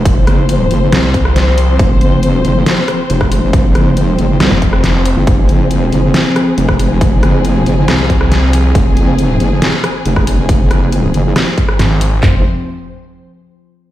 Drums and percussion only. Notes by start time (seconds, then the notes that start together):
0.05 kick, closed hi-hat
0.27 cross-stick, closed hi-hat
0.49 closed hi-hat
0.71 open hi-hat
0.92 cross-stick, snare, closed hi-hat
1.14 kick, closed hi-hat
1.25 cross-stick
1.36 snare, closed hi-hat
1.58 open hi-hat
1.79 kick, closed hi-hat
2.01 closed hi-hat
2.23 closed hi-hat
2.45 open hi-hat
2.66 snare, closed hi-hat
2.88 cross-stick, closed hi-hat
3.10 closed hi-hat
3.21 kick, cross-stick
3.32 open hi-hat
3.53 kick, closed hi-hat
3.75 cross-stick, closed hi-hat
3.97 closed hi-hat
4.19 open hi-hat
4.40 cross-stick, snare, closed hi-hat
4.62 kick, closed hi-hat
4.73 cross-stick
4.84 snare, closed hi-hat
5.05 open hi-hat
5.27 kick, closed hi-hat
5.49 closed hi-hat
5.71 closed hi-hat
5.92 open hi-hat
6.14 snare, closed hi-hat
6.36 cross-stick, closed hi-hat
6.58 closed hi-hat
6.69 kick, cross-stick
6.79 open hi-hat
7.01 kick, closed hi-hat
7.23 cross-stick, closed hi-hat
7.45 closed hi-hat
7.66 open hi-hat
7.88 cross-stick, snare, closed hi-hat
8.10 kick, closed hi-hat
8.21 cross-stick
8.32 snare, closed hi-hat
8.53 open hi-hat
8.75 kick, closed hi-hat
8.97 closed hi-hat
9.19 closed hi-hat
9.40 open hi-hat
9.62 snare, closed hi-hat
9.84 cross-stick, closed hi-hat
10.05 closed hi-hat
10.16 kick, cross-stick
10.27 open hi-hat
10.49 kick, closed hi-hat
10.71 cross-stick, closed hi-hat
10.92 closed hi-hat
11.14 open hi-hat
11.36 cross-stick, snare, closed hi-hat
11.58 kick, closed hi-hat
11.69 cross-stick
11.79 snare, closed hi-hat
12.01 open hi-hat
12.23 kick, clap, floor tom